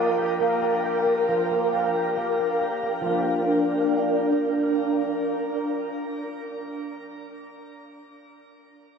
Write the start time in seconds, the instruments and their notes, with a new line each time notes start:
Already playing: clean electric guitar F3 A#3 D4 G4, string machine A#4 F5 G5 D6
0.18 clean electric guitar G4
0.40 clean electric guitar A#3
0.62 clean electric guitar D4
0.84 clean electric guitar G4
1.06 clean electric guitar D4
1.28 clean electric guitar F3
1.51 clean electric guitar A#3
1.73 clean electric guitar D4
1.95 clean electric guitar G4
2.17 clean electric guitar A#3
2.39 clean electric guitar D4
2.61 clean electric guitar G4
2.83 clean electric guitar D4
3.01 clean electric guitar F3
3.06 clean electric guitar A#3, string machine D4 A#4 F5 G5
3.10 clean electric guitar D4 G4